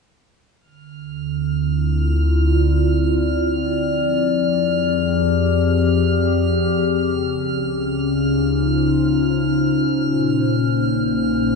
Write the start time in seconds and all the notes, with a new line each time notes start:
0.60 D2 F6
0.65 D3
1.25 C4
1.48 E4
1.54 F4
2.07 D5
3.77 F2 F3
4.45 G4 G#4
6.89 C#2 C#3
7.31 C#4
8.00 D#4
8.20 F4
8.30 C5
10.00 A#1 A#2
10.47 A#3
11.45 G#4